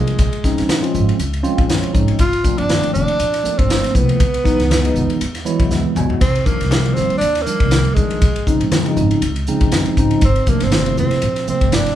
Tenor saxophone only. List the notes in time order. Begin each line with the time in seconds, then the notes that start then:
Already playing: G#3
2.20 F4
2.58 D4
2.93 D4
3.58 C4
3.95 B3
6.21 C4
6.46 A#3
6.94 C4
7.18 D4
7.42 A#3
7.94 G#3
10.25 C4
10.49 A#3
10.64 C4
10.99 C4
11.50 C4
11.74 D4